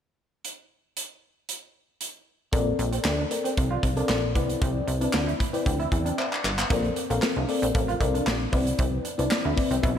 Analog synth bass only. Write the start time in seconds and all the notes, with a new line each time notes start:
2.53 A#1
2.79 A#1
3.05 D2
3.58 C2
3.83 C2
4.09 A#1
4.35 C2
4.62 C2
4.88 C2
5.14 D2
5.66 D2
5.92 E2
6.44 G1
6.70 A#1
7.10 A#1
7.36 C2
7.62 A#1
7.75 A1
8.00 C2
8.27 A#1
8.53 C2
8.79 C2
9.19 C2
9.45 D2
9.71 C2
9.83 B1